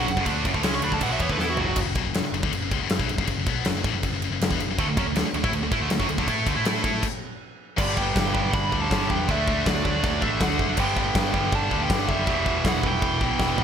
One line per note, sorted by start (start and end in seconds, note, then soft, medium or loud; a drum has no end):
0.00 0.09 F#3 loud
0.00 0.24 F#5 loud
0.07 0.17 F#1 medium
0.07 0.16 F#2 medium
0.07 0.17 C#3 medium
0.07 crash medium
0.17 0.26 F#1 medium
0.17 0.26 F#2 loud
0.17 0.25 C#3 loud
0.17 kick medium
0.26 0.44 D2 loud
0.26 0.45 D3 loud
0.26 0.45 A3 loud
0.26 0.46 D4 loud
0.26 kick loud
0.26 crash medium
0.45 0.54 F#1 loud
0.45 0.54 F#2 loud
0.45 0.53 C#3 loud
0.45 kick loud
0.45 crash medium
0.54 0.62 D2 loud
0.54 0.62 D3 medium
0.54 0.63 A3 loud
0.54 kick medium
0.62 0.81 C#2 loud
0.62 0.81 C#3 loud
0.62 0.82 G#3 loud
0.62 0.83 C#4 loud
0.62 snare loud
0.62 crash medium
0.75 0.84 C#6 loud
0.81 1.00 D2 medium
0.81 1.00 D3 loud
0.81 1.01 A3 loud
0.81 1.02 D4 loud
0.81 0.93 B5 medium
0.81 crash medium
0.92 1.02 A5 loud
0.92 kick medium
1.01 1.09 A1 loud
1.01 1.10 A2 loud
1.01 1.11 E3 loud
1.01 1.12 F#5 loud
1.01 kick medium
1.01 crash loud
1.09 1.19 B1 loud
1.09 1.20 B2 loud
1.09 1.20 F#3 loud
1.09 1.21 E5 loud
1.19 1.29 E2 loud
1.19 1.29 E3 medium
1.19 1.30 B3 loud
1.19 1.31 C#5 medium
1.19 kick medium
1.19 crash medium
1.30 1.37 D2 medium
1.30 1.38 D3 medium
1.30 1.39 A3 loud
1.30 1.38 B4 medium
1.30 kick medium
1.37 1.55 E2 medium
1.37 1.58 E3 medium
1.37 1.58 B3 loud
1.37 1.58 E4 loud
1.37 1.48 A4 loud
1.37 snare medium
1.50 1.59 F#4 loud
1.56 1.75 F#1 loud
1.56 1.77 F#2 medium
1.56 1.77 C#3 loud
1.56 1.77 F#3 loud
1.56 floor tom loud
1.61 1.78 F#4 loud
1.76 1.85 F#1 loud
1.76 1.86 F#2 loud
1.76 1.86 C#3 loud
1.76 kick loud
1.76 crash loud
1.76 crash medium
1.85 1.95 F#1 medium
1.85 1.96 F#2 medium
1.85 1.96 C#3 medium
1.95 2.04 B1 loud
1.95 2.05 B2 medium
1.95 2.05 F#3 loud
1.95 kick loud
1.95 crash medium
2.05 2.13 F#1 medium
2.05 2.14 F#2 medium
2.05 2.14 C#3 medium
2.14 2.23 F#1 medium
2.14 2.23 F#2 medium
2.14 2.24 C#3 medium
2.14 snare loud
2.14 crash medium
2.24 muted distorted electric guitar stroke medium
2.32 2.42 F#1 medium
2.32 2.43 F#2 medium
2.32 2.43 C#3 medium
2.32 crash medium
2.43 2.50 D2 medium
2.43 2.52 D3 medium
2.43 2.53 A3 medium
2.43 kick loud
2.51 2.60 F#1 medium
2.51 2.61 F#2 medium
2.51 2.61 C#3 medium
2.51 crash medium
2.61 2.70 F#1 medium
2.61 2.71 F#2 medium
2.61 2.71 C#3 medium
2.71 2.79 C#2 medium
2.71 2.80 C#3 medium
2.71 2.81 G#3 loud
2.71 kick loud
2.71 crash medium
2.79 2.88 F#1 loud
2.79 2.89 F#2 loud
2.79 2.89 C#3 loud
2.89 2.98 F#1 medium
2.89 2.99 F#2 medium
2.89 2.99 C#3 medium
2.89 snare loud
2.89 crash medium
2.99 3.08 B1 loud
2.99 3.08 B2 medium
2.99 3.09 F#3 medium
2.99 kick loud
3.08 3.17 F#1 medium
3.08 3.17 F#2 medium
3.08 3.18 C#3 medium
3.08 crash medium
3.18 3.27 F#1 medium
3.18 3.27 F#2 medium
3.18 3.28 C#3 loud
3.18 kick loud
3.27 3.36 F#1 medium
3.27 3.38 F#2 medium
3.27 3.38 C#3 medium
3.27 kick medium
3.27 crash medium
3.37 3.46 F#1 medium
3.37 3.48 F#2 medium
3.37 3.47 C#3 medium
3.46 3.64 B1 medium
3.46 3.65 B2 medium
3.46 3.66 F#3 loud
3.46 3.66 B3 loud
3.46 kick loud
3.46 crash medium
3.65 3.74 F#1 medium
3.65 3.75 F#2 medium
3.65 3.76 C#3 medium
3.65 snare loud
3.65 crash medium
3.75 3.83 F#1 medium
3.75 3.85 F#2 medium
3.75 3.85 C#3 medium
3.84 3.92 A1 medium
3.84 3.93 A2 medium
3.84 3.94 E3 loud
3.84 kick loud
3.84 crash medium
3.93 4.02 F#1 medium
3.93 4.03 F#2 medium
3.93 4.03 C#3 medium
4.03 4.11 F#1 medium
4.03 4.13 F#2 medium
4.03 4.13 C#3 medium
4.03 kick medium
4.03 crash medium
4.11 4.20 F#1 medium
4.11 4.22 F#2 medium
4.11 4.22 C#3 medium
4.21 4.30 F#1 medium
4.21 4.31 F#2 medium
4.21 4.32 C#3 medium
4.21 crash medium
4.30 4.39 F#1 medium
4.30 4.41 F#2 medium
4.30 4.41 C#3 medium
4.40 4.49 F#1 medium
4.40 4.51 F#2 medium
4.40 4.51 C#3 medium
4.40 snare loud
4.40 crash medium
4.50 4.58 E2 loud
4.50 4.59 E3 medium
4.50 4.60 B3 medium
4.50 kick loud
4.58 4.67 F#1 medium
4.58 4.69 F#2 medium
4.58 4.70 C#3 medium
4.58 crash medium
4.69 4.77 F#1 medium
4.69 4.79 F#2 medium
4.69 4.79 C#3 medium
4.78 4.85 D2 loud
4.78 4.88 D3 loud
4.78 4.88 A3 loud
4.78 kick loud
4.78 crash medium
4.86 4.95 D2 medium
4.86 4.98 D3 medium
4.86 4.98 A3 medium
4.97 5.05 F#2 loud
4.97 5.06 F#3 medium
4.97 5.06 C#4 loud
4.97 kick loud
4.97 crash medium
5.06 5.15 D2 medium
5.06 5.15 D3 medium
5.06 5.15 A3 medium
5.15 5.24 D2 medium
5.15 5.25 D3 medium
5.15 5.25 A3 medium
5.15 snare loud
5.15 crash medium
5.25 muted picked electric bass stroke soft
5.25 muted distorted electric guitar stroke medium
5.33 5.42 D2 medium
5.33 5.44 D3 medium
5.33 5.43 A3 medium
5.33 crash medium
5.44 5.51 A2 loud
5.44 5.52 A3 medium
5.44 5.53 E4 loud
5.44 kick loud
5.52 5.61 D2 medium
5.52 5.61 D3 medium
5.52 5.62 A3 medium
5.52 crash medium
5.61 5.70 D2 medium
5.61 5.72 D3 medium
5.61 5.71 A3 medium
5.72 5.80 A2 loud
5.72 5.81 A3 loud
5.72 5.81 E4 loud
5.72 kick loud
5.72 crash medium
5.81 5.90 D2 loud
5.81 5.90 D3 medium
5.81 5.90 A3 loud
5.90 5.99 D2 medium
5.90 6.00 D3 medium
5.90 6.01 A3 medium
5.90 snare loud
5.90 crash medium
5.99 6.08 F#2 medium
5.99 6.09 F#3 medium
5.99 6.09 C#4 loud
5.99 kick loud
6.09 6.17 D2 medium
6.09 6.18 D3 medium
6.09 6.19 A3 medium
6.09 crash medium
6.18 6.27 D2 medium
6.18 6.28 D3 medium
6.18 6.27 A3 loud
6.18 kick loud
6.28 6.45 A2 loud
6.28 6.45 A3 loud
6.28 6.47 E4 loud
6.28 6.47 A4 loud
6.28 kick medium
6.28 crash medium
6.46 6.55 D2 loud
6.46 6.55 D3 loud
6.46 6.54 A3 loud
6.46 kick loud
6.46 crash medium
6.55 6.65 A2 loud
6.55 6.63 A3 medium
6.55 6.64 E4 loud
6.64 6.83 A2 medium
6.64 6.82 A3 loud
6.64 6.82 E4 loud
6.64 6.83 A4 loud
6.64 snare loud
6.64 crash medium
6.83 7.02 A2 medium
6.83 7.02 A3 medium
6.83 7.02 E4 loud
6.83 7.02 A4 loud
6.83 kick loud
6.83 crash medium
7.03 kick loud
7.03 crash loud
7.77 8.10 G1 loud
7.77 8.70 G2 medium
7.77 8.71 D3 loud
7.77 7.96 G3 medium
7.77 8.70 G3 loud
7.77 7.98 D5 medium
7.77 kick loud
7.77 crash loud
7.77 china medium
7.97 8.50 B3 medium
7.97 8.50 G5 medium
7.97 kick medium
8.16 8.32 G1 medium
8.16 kick loud
8.16 snare loud
8.16 china medium
8.34 8.50 G1 medium
8.34 9.28 G2 medium
8.34 9.27 D3 medium
8.34 9.27 G3 medium
8.34 kick loud
8.53 8.69 G1 loud
8.53 8.80 D4 medium
8.53 8.81 B5 loud
8.53 kick loud
8.53 china medium
8.71 8.88 D2 medium
8.71 8.90 G2 medium
8.71 8.90 D3 medium
8.71 8.89 G3 medium
8.71 kick medium
8.82 9.09 C#4 medium
8.82 9.10 A5 medium
8.91 9.07 G1 medium
8.91 9.27 G2 medium
8.91 9.27 D3 medium
8.91 9.29 G3 medium
8.91 kick loud
8.91 snare loud
8.91 china medium
9.10 9.26 E2 medium
9.10 9.28 B3 medium
9.10 9.31 G5 medium
9.10 kick loud
9.28 9.61 D2 loud
9.28 10.20 D3 loud
9.28 9.66 A3 medium
9.28 10.21 A3 loud
9.28 10.19 D4 loud
9.28 9.67 E5 medium
9.28 kick loud
9.28 china medium
9.48 kick loud
9.66 9.82 D2 loud
9.66 10.01 F#3 medium
9.66 10.01 D5 medium
9.66 kick loud
9.66 snare loud
9.66 china medium
9.85 10.01 D2 medium
9.85 10.78 D3 medium
9.85 10.78 A3 medium
9.85 10.77 D4 loud
9.85 kick medium
10.03 10.19 D2 loud
10.03 10.21 F#3 medium
10.03 10.22 D5 loud
10.03 kick loud
10.03 china medium
10.20 10.38 A1 loud
10.20 10.38 D3 medium
10.20 10.39 A3 medium
10.20 10.39 D4 loud
10.20 10.41 E5 medium
10.20 kick medium
10.25 10.42 G3 medium
10.39 10.56 D2 loud
10.39 10.76 D3 medium
10.39 10.77 A3 medium
10.39 10.68 A3 medium
10.39 10.78 D4 loud
10.39 10.68 F#5 medium
10.39 kick loud
10.39 snare loud
10.39 china medium
10.59 10.75 F#1 medium
10.59 kick medium
10.76 11.10 G1 loud
10.76 11.70 G2 loud
10.76 11.71 D3 loud
10.76 11.70 G3 loud
10.76 10.97 B3 medium
10.76 10.96 G5 loud
10.76 kick loud
10.76 china medium
10.76 crash loud
10.97 11.50 B3 medium
10.97 11.55 G5 loud
10.97 kick loud
11.15 11.31 G1 medium
11.15 kick loud
11.15 snare loud
11.15 china medium
11.34 11.50 G1 medium
11.34 12.26 G2 medium
11.34 12.27 D3 medium
11.34 12.28 G3 medium
11.34 kick loud
11.52 11.69 G1 loud
11.52 11.79 D4 medium
11.52 11.83 A5 loud
11.52 kick loud
11.52 china medium
11.70 11.87 D2 medium
11.70 11.88 G2 medium
11.70 11.89 D3 medium
11.70 11.92 G3 medium
11.70 kick medium
11.82 12.07 B3 medium
11.82 12.09 G5 loud
11.89 12.06 G1 medium
11.89 12.25 G2 medium
11.89 12.27 D3 medium
11.89 12.28 G3 loud
11.89 kick loud
11.89 snare loud
11.89 china medium
12.09 12.27 F#1 medium
12.09 12.62 G3 medium
12.09 12.61 E5 loud
12.09 kick medium
12.25 12.59 E1 loud
12.25 13.19 E2 loud
12.25 13.20 B2 loud
12.25 13.19 E3 loud
12.25 kick loud
12.25 china medium
12.46 kick medium
12.65 12.81 E1 medium
12.65 12.83 B3 medium
12.65 12.87 F#5 loud
12.65 kick loud
12.65 snare loud
12.65 china medium
12.83 12.99 E1 medium
12.83 13.64 E2 medium
12.83 13.64 B2 medium
12.83 13.64 E3 medium
12.83 13.60 B3 medium
12.83 kick loud
12.87 13.60 G5 loud
13.02 13.18 E1 loud
13.02 kick loud
13.02 china medium
13.20 13.37 B1 medium
13.20 13.38 E2 medium
13.20 13.39 B2 medium
13.20 13.38 E3 medium
13.20 kick medium
13.39 13.56 E1 medium
13.39 13.64 E2 medium
13.39 13.64 B2 medium
13.39 13.64 E3 medium
13.39 kick loud
13.39 snare medium
13.58 13.64 A1 medium
13.58 floor tom loud